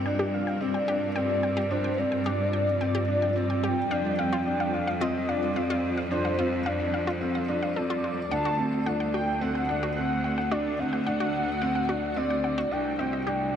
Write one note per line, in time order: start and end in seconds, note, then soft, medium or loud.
0.00 3.88 G2 medium
0.00 8.31 G3 medium
0.00 10.07 C4 medium
0.00 8.31 F4 medium
0.00 3.91 A#4 medium
0.06 0.46 D4 medium
0.06 0.10 G5 medium
0.19 0.27 G4 medium
0.33 0.62 F5 medium
0.47 0.51 G5 medium
0.61 0.81 C4 medium
0.61 1.16 D5 loud
0.74 0.79 G5 medium
0.88 1.08 D4 medium
0.88 0.95 G4 loud
1.16 1.56 C4 medium
1.16 1.72 D5 loud
1.16 1.20 G5 medium
1.43 1.48 G5 medium
1.57 1.64 G4 loud
1.71 1.91 D4 medium
1.71 2.00 C5 medium
1.84 1.89 G5 medium
1.98 2.18 C4 medium
1.98 3.65 D5 loud
2.12 2.16 G5 medium
2.26 2.66 D4 medium
2.26 2.33 G4 medium
2.53 2.58 G5 medium
2.81 3.01 C4 medium
2.81 2.85 G5 medium
2.95 3.02 G4 loud
3.08 3.28 D4 medium
3.22 3.27 G5 medium
3.36 3.76 C4 medium
3.50 3.54 G5 medium
3.63 3.71 G4 loud
3.63 4.75 G5 loud
3.90 8.28 F2 loud
3.90 4.11 D4 medium
3.90 3.95 F5 medium
4.18 4.38 C4 medium
4.18 4.23 F5 medium
4.33 4.40 F4 loud
4.46 4.86 D4 medium
4.60 4.64 F5 medium
4.73 5.00 F5 loud
4.87 4.92 F5 medium
5.01 5.21 C4 medium
5.01 5.08 F4 loud
5.01 5.30 D#5 loud
5.28 5.49 D4 medium
5.28 5.83 D5 medium
5.28 5.33 F5 medium
5.56 5.96 C4 medium
5.56 5.60 F5 medium
5.70 5.77 F4 loud
5.89 12.72 A4 medium
5.97 6.02 F5 medium
6.11 6.31 D4 medium
6.11 6.62 C5 loud
6.25 6.29 F5 medium
6.38 6.58 C4 medium
6.38 6.46 F4 loud
6.66 7.06 D4 medium
6.66 6.70 F5 medium
6.94 6.98 F5 medium
7.07 7.15 F4 loud
7.21 7.41 C4 medium
7.35 7.39 F5 medium
7.48 7.68 D4 medium
7.63 7.73 F5 medium
7.76 8.16 C4 medium
7.76 7.87 A4 medium
7.76 8.33 D5 medium
7.90 7.94 F4 loud
8.04 8.11 F4 medium
8.31 12.69 D2 loud
8.31 12.72 A3 medium
8.31 8.51 D4 medium
8.31 8.36 F#5 medium
8.31 8.86 A5 loud
8.45 8.52 F#4 loud
8.59 8.79 C4 medium
8.84 13.56 D4 medium
8.84 9.26 D4 medium
8.84 8.91 F#5 medium
9.00 9.05 F#5 medium
9.14 9.21 F#4 medium
9.14 9.43 G5 loud
9.41 9.61 C4 loud
9.41 9.96 F#5 loud
9.55 9.60 F#5 medium
9.69 9.89 D4 medium
9.69 12.72 F#4 medium
9.69 9.73 F#5 medium
9.83 9.90 F#4 loud
9.96 10.36 C4 medium
9.96 10.53 F#5 loud
10.24 10.28 F#5 medium
10.38 10.42 F#5 medium
10.51 10.71 D4 medium
10.51 10.59 F#4 loud
10.51 10.81 D5 loud
10.79 10.99 C4 medium
10.79 12.19 F#5 loud
10.93 10.97 F#5 medium
11.06 11.46 D4 medium
11.06 11.11 F#5 medium
11.20 11.28 F#4 loud
11.62 11.82 C4 medium
11.62 11.66 F#5 medium
11.75 11.80 F#5 medium
11.89 12.09 D4 medium
11.89 11.96 F#4 loud
12.16 12.56 C4 medium
12.16 12.71 D5 loud
12.30 12.35 F#5 medium
12.44 12.48 F#5 medium
12.58 12.65 F#4 loud
12.71 13.56 C2 medium
12.71 13.56 G3 medium
12.71 12.91 D4 medium
12.71 13.56 G5 loud
12.99 13.19 C4 medium
12.99 13.03 D#5 medium
13.13 13.56 C4 medium
13.13 13.17 D#5 medium
13.27 13.56 D4 medium
13.27 13.34 G4 medium